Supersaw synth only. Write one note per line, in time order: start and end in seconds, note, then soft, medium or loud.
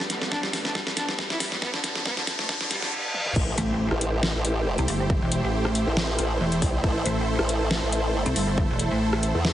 0.00 2.89 G2 medium
0.00 2.89 D3 medium
0.00 2.89 A3 medium
0.00 2.89 B3 medium
3.36 9.53 A3 medium
3.36 9.53 E4 medium
3.36 6.80 G4 medium
3.36 9.53 C5 medium
6.84 9.53 A4 medium